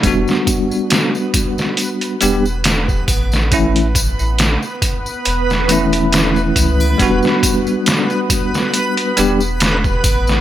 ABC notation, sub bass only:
X:1
M:4/4
L:1/16
Q:"Swing 16ths" 1/4=69
K:Edor
V:1 name="Sub bass" clef=bass
E,,, z8 z E,,,4 A,,,2- | A,,,3 A,,,2 z3 E,,,6 C,,2 | E,,, z8 z E,,,4 A,,,2 |]